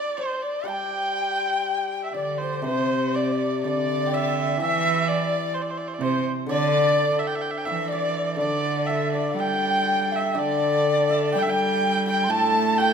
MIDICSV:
0, 0, Header, 1, 6, 480
1, 0, Start_track
1, 0, Tempo, 986842
1, 320, Time_signature, 2, 2, 24, 8
1, 1769, Tempo, 947867
1, 4169, Tempo, 988468
1, 5609, Tempo, 946372
1, 6416, End_track
2, 0, Start_track
2, 0, Title_t, "Hammered dulcimer"
2, 0, Program_c, 0, 15
2, 0, Note_on_c, 0, 74, 58
2, 86, Note_on_c, 0, 72, 53
2, 316, Note_on_c, 0, 79, 57
2, 1040, Note_off_c, 0, 74, 0
2, 1042, Note_on_c, 0, 74, 62
2, 1172, Note_off_c, 0, 72, 0
2, 1173, Note_on_c, 0, 72, 48
2, 1282, Note_off_c, 0, 72, 0
2, 1284, Note_on_c, 0, 72, 58
2, 1323, Note_off_c, 0, 79, 0
2, 1527, Note_off_c, 0, 74, 0
2, 1529, Note_on_c, 0, 74, 58
2, 1769, Note_off_c, 0, 74, 0
2, 1771, Note_on_c, 0, 74, 67
2, 1984, Note_on_c, 0, 79, 59
2, 2024, Note_on_c, 0, 76, 85
2, 2255, Note_off_c, 0, 76, 0
2, 2257, Note_on_c, 0, 76, 71
2, 2601, Note_off_c, 0, 72, 0
2, 2970, Note_on_c, 0, 72, 76
2, 3017, Note_off_c, 0, 74, 0
2, 3033, Note_off_c, 0, 79, 0
2, 3215, Note_on_c, 0, 74, 83
2, 3418, Note_off_c, 0, 76, 0
2, 3811, Note_on_c, 0, 76, 67
2, 3938, Note_off_c, 0, 74, 0
2, 3940, Note_on_c, 0, 74, 74
2, 4183, Note_off_c, 0, 74, 0
2, 4185, Note_on_c, 0, 74, 66
2, 4301, Note_off_c, 0, 72, 0
2, 4420, Note_off_c, 0, 76, 0
2, 4422, Note_on_c, 0, 76, 66
2, 4535, Note_off_c, 0, 74, 0
2, 4537, Note_on_c, 0, 74, 57
2, 4660, Note_on_c, 0, 79, 65
2, 4695, Note_off_c, 0, 79, 0
2, 4697, Note_on_c, 0, 79, 50
2, 4731, Note_off_c, 0, 79, 0
2, 4733, Note_on_c, 0, 79, 53
2, 4766, Note_off_c, 0, 79, 0
2, 4768, Note_on_c, 0, 79, 40
2, 4798, Note_off_c, 0, 79, 0
2, 4800, Note_on_c, 0, 79, 50
2, 4840, Note_off_c, 0, 79, 0
2, 4842, Note_on_c, 0, 79, 42
2, 4875, Note_off_c, 0, 79, 0
2, 4877, Note_on_c, 0, 79, 45
2, 4920, Note_off_c, 0, 79, 0
2, 4922, Note_on_c, 0, 79, 43
2, 4949, Note_off_c, 0, 79, 0
2, 4951, Note_on_c, 0, 79, 48
2, 4982, Note_off_c, 0, 79, 0
2, 4984, Note_on_c, 0, 79, 44
2, 5014, Note_off_c, 0, 79, 0
2, 5016, Note_on_c, 0, 79, 54
2, 5055, Note_off_c, 0, 79, 0
2, 5057, Note_on_c, 0, 79, 46
2, 5124, Note_off_c, 0, 74, 0
2, 5126, Note_on_c, 0, 74, 67
2, 5487, Note_off_c, 0, 76, 0
2, 5489, Note_on_c, 0, 76, 77
2, 5598, Note_off_c, 0, 79, 0
2, 5600, Note_on_c, 0, 79, 78
2, 5670, Note_off_c, 0, 79, 0
2, 5672, Note_on_c, 0, 79, 75
2, 5971, Note_off_c, 0, 79, 0
2, 5973, Note_on_c, 0, 79, 68
2, 6094, Note_on_c, 0, 81, 87
2, 6306, Note_off_c, 0, 81, 0
2, 6308, Note_on_c, 0, 81, 65
2, 6345, Note_off_c, 0, 79, 0
2, 6347, Note_on_c, 0, 79, 84
2, 6353, Note_off_c, 0, 74, 0
2, 6416, Note_off_c, 0, 76, 0
2, 6416, Note_off_c, 0, 79, 0
2, 6416, Note_off_c, 0, 81, 0
2, 6416, End_track
3, 0, Start_track
3, 0, Title_t, "Dizi"
3, 0, Program_c, 1, 73
3, 0, Note_on_c, 1, 74, 74
3, 94, Note_on_c, 1, 72, 61
3, 101, Note_off_c, 1, 74, 0
3, 215, Note_on_c, 1, 74, 56
3, 222, Note_off_c, 1, 72, 0
3, 333, Note_on_c, 1, 81, 67
3, 340, Note_off_c, 1, 74, 0
3, 357, Note_on_c, 1, 79, 73
3, 362, Note_off_c, 1, 81, 0
3, 1044, Note_off_c, 1, 79, 0
3, 1047, Note_on_c, 1, 74, 61
3, 1158, Note_off_c, 1, 74, 0
3, 1174, Note_on_c, 1, 72, 61
3, 1284, Note_off_c, 1, 72, 0
3, 1289, Note_on_c, 1, 72, 69
3, 1542, Note_on_c, 1, 74, 68
3, 1549, Note_off_c, 1, 72, 0
3, 1579, Note_on_c, 1, 72, 56
3, 1586, Note_off_c, 1, 74, 0
3, 1616, Note_on_c, 1, 74, 65
3, 1623, Note_off_c, 1, 72, 0
3, 1771, Note_off_c, 1, 74, 0
3, 1775, Note_on_c, 1, 76, 78
3, 1792, Note_on_c, 1, 74, 85
3, 1797, Note_off_c, 1, 76, 0
3, 2264, Note_on_c, 1, 79, 82
3, 2271, Note_off_c, 1, 74, 0
3, 2284, Note_on_c, 1, 76, 89
3, 2290, Note_off_c, 1, 79, 0
3, 2470, Note_off_c, 1, 76, 0
3, 2470, Note_on_c, 1, 76, 57
3, 2506, Note_off_c, 1, 76, 0
3, 2506, Note_on_c, 1, 76, 68
3, 2531, Note_on_c, 1, 74, 74
3, 2536, Note_off_c, 1, 76, 0
3, 2742, Note_off_c, 1, 74, 0
3, 2982, Note_on_c, 1, 72, 75
3, 3092, Note_off_c, 1, 72, 0
3, 3216, Note_on_c, 1, 74, 105
3, 3549, Note_off_c, 1, 74, 0
3, 3804, Note_on_c, 1, 79, 69
3, 3823, Note_on_c, 1, 76, 75
3, 3828, Note_off_c, 1, 79, 0
3, 3923, Note_on_c, 1, 74, 66
3, 3930, Note_off_c, 1, 76, 0
3, 4163, Note_off_c, 1, 74, 0
3, 4166, Note_on_c, 1, 74, 80
3, 4403, Note_on_c, 1, 79, 64
3, 4411, Note_off_c, 1, 74, 0
3, 4422, Note_on_c, 1, 76, 70
3, 4427, Note_off_c, 1, 79, 0
3, 4654, Note_on_c, 1, 79, 87
3, 4662, Note_off_c, 1, 76, 0
3, 5015, Note_on_c, 1, 76, 67
3, 5023, Note_off_c, 1, 79, 0
3, 5133, Note_on_c, 1, 74, 86
3, 5140, Note_off_c, 1, 76, 0
3, 5604, Note_off_c, 1, 74, 0
3, 5607, Note_on_c, 1, 79, 93
3, 5672, Note_off_c, 1, 79, 0
3, 5680, Note_on_c, 1, 79, 90
3, 5953, Note_off_c, 1, 79, 0
3, 5973, Note_on_c, 1, 79, 84
3, 6064, Note_on_c, 1, 84, 68
3, 6071, Note_off_c, 1, 79, 0
3, 6093, Note_on_c, 1, 81, 90
3, 6101, Note_off_c, 1, 84, 0
3, 6333, Note_off_c, 1, 81, 0
3, 6333, Note_on_c, 1, 81, 83
3, 6351, Note_on_c, 1, 79, 90
3, 6356, Note_off_c, 1, 81, 0
3, 6416, Note_off_c, 1, 79, 0
3, 6416, End_track
4, 0, Start_track
4, 0, Title_t, "Erhu"
4, 0, Program_c, 2, 110
4, 0, Note_on_c, 2, 74, 103
4, 82, Note_on_c, 2, 72, 80
4, 89, Note_off_c, 2, 74, 0
4, 202, Note_on_c, 2, 74, 70
4, 210, Note_off_c, 2, 72, 0
4, 319, Note_on_c, 2, 79, 87
4, 326, Note_off_c, 2, 74, 0
4, 989, Note_off_c, 2, 79, 0
4, 992, Note_on_c, 2, 76, 46
4, 1036, Note_on_c, 2, 74, 69
4, 1043, Note_off_c, 2, 76, 0
4, 1158, Note_on_c, 2, 72, 60
4, 1165, Note_off_c, 2, 74, 0
4, 1279, Note_off_c, 2, 72, 0
4, 1282, Note_on_c, 2, 72, 84
4, 1531, Note_on_c, 2, 74, 78
4, 1538, Note_off_c, 2, 72, 0
4, 1765, Note_off_c, 2, 74, 0
4, 1768, Note_on_c, 2, 74, 81
4, 2021, Note_on_c, 2, 76, 86
4, 2029, Note_off_c, 2, 74, 0
4, 2259, Note_off_c, 2, 76, 0
4, 2262, Note_on_c, 2, 76, 105
4, 2501, Note_on_c, 2, 74, 91
4, 2508, Note_off_c, 2, 76, 0
4, 2732, Note_on_c, 2, 72, 73
4, 2740, Note_off_c, 2, 74, 0
4, 2773, Note_on_c, 2, 74, 67
4, 2781, Note_off_c, 2, 72, 0
4, 2816, Note_on_c, 2, 72, 77
4, 2823, Note_off_c, 2, 74, 0
4, 2851, Note_on_c, 2, 74, 77
4, 2859, Note_off_c, 2, 72, 0
4, 2903, Note_on_c, 2, 72, 61
4, 2910, Note_off_c, 2, 74, 0
4, 2934, Note_on_c, 2, 74, 69
4, 2942, Note_off_c, 2, 72, 0
4, 2979, Note_on_c, 2, 72, 80
4, 2987, Note_off_c, 2, 74, 0
4, 3099, Note_off_c, 2, 72, 0
4, 3219, Note_on_c, 2, 74, 104
4, 3570, Note_on_c, 2, 76, 74
4, 3578, Note_off_c, 2, 74, 0
4, 3609, Note_on_c, 2, 79, 75
4, 3617, Note_off_c, 2, 76, 0
4, 3649, Note_on_c, 2, 76, 81
4, 3656, Note_off_c, 2, 79, 0
4, 3680, Note_on_c, 2, 79, 71
4, 3687, Note_off_c, 2, 76, 0
4, 3728, Note_on_c, 2, 76, 73
4, 3736, Note_off_c, 2, 79, 0
4, 3762, Note_on_c, 2, 79, 82
4, 3770, Note_off_c, 2, 76, 0
4, 3803, Note_on_c, 2, 76, 92
4, 3810, Note_off_c, 2, 79, 0
4, 3925, Note_off_c, 2, 76, 0
4, 3928, Note_on_c, 2, 74, 92
4, 4153, Note_off_c, 2, 74, 0
4, 4168, Note_on_c, 2, 74, 97
4, 4407, Note_on_c, 2, 76, 85
4, 4414, Note_off_c, 2, 74, 0
4, 4528, Note_off_c, 2, 76, 0
4, 4531, Note_on_c, 2, 74, 81
4, 4667, Note_on_c, 2, 79, 96
4, 4675, Note_off_c, 2, 74, 0
4, 5034, Note_on_c, 2, 76, 79
4, 5042, Note_off_c, 2, 79, 0
4, 5147, Note_on_c, 2, 74, 99
4, 5154, Note_off_c, 2, 76, 0
4, 5632, Note_on_c, 2, 79, 92
4, 5640, Note_off_c, 2, 74, 0
4, 5652, Note_on_c, 2, 76, 84
4, 5659, Note_off_c, 2, 79, 0
4, 5688, Note_on_c, 2, 79, 104
4, 5696, Note_off_c, 2, 76, 0
4, 5977, Note_off_c, 2, 79, 0
4, 5983, Note_on_c, 2, 79, 100
4, 6097, Note_on_c, 2, 81, 114
4, 6105, Note_off_c, 2, 79, 0
4, 6337, Note_on_c, 2, 79, 104
4, 6344, Note_off_c, 2, 81, 0
4, 6416, Note_off_c, 2, 79, 0
4, 6416, End_track
5, 0, Start_track
5, 0, Title_t, "Cello"
5, 0, Program_c, 3, 42
5, 1046, Note_on_c, 3, 50, 63
5, 1296, Note_on_c, 3, 48, 76
5, 1304, Note_off_c, 3, 50, 0
5, 1770, Note_on_c, 3, 50, 73
5, 1777, Note_off_c, 3, 48, 0
5, 2256, Note_on_c, 3, 52, 99
5, 2264, Note_off_c, 3, 50, 0
5, 2738, Note_off_c, 3, 52, 0
5, 2965, Note_on_c, 3, 48, 84
5, 3083, Note_off_c, 3, 48, 0
5, 3212, Note_on_c, 3, 50, 99
5, 3547, Note_off_c, 3, 50, 0
5, 3804, Note_on_c, 3, 52, 70
5, 4173, Note_on_c, 3, 50, 84
5, 4180, Note_off_c, 3, 52, 0
5, 4640, Note_on_c, 3, 55, 67
5, 4647, Note_off_c, 3, 50, 0
5, 5134, Note_on_c, 3, 50, 81
5, 5141, Note_off_c, 3, 55, 0
5, 5613, Note_on_c, 3, 55, 73
5, 5620, Note_off_c, 3, 50, 0
5, 5681, Note_off_c, 3, 55, 0
5, 5685, Note_on_c, 3, 55, 80
5, 6091, Note_on_c, 3, 57, 103
5, 6098, Note_off_c, 3, 55, 0
5, 6416, Note_off_c, 3, 57, 0
5, 6416, End_track
6, 0, Start_track
6, 0, Title_t, "Hammered dulcimer"
6, 0, Program_c, 4, 15
6, 310, Note_on_c, 4, 55, 50
6, 1274, Note_on_c, 4, 48, 58
6, 1763, Note_off_c, 4, 55, 0
6, 2243, Note_on_c, 4, 52, 59
6, 2250, Note_off_c, 4, 48, 0
6, 3201, Note_on_c, 4, 50, 59
6, 3680, Note_off_c, 4, 52, 0
6, 4157, Note_off_c, 4, 50, 0
6, 4163, Note_on_c, 4, 50, 55
6, 5119, Note_off_c, 4, 50, 0
6, 5125, Note_on_c, 4, 50, 58
6, 6088, Note_on_c, 4, 45, 61
6, 6416, Note_off_c, 4, 45, 0
6, 6416, Note_off_c, 4, 50, 0
6, 6416, End_track
0, 0, End_of_file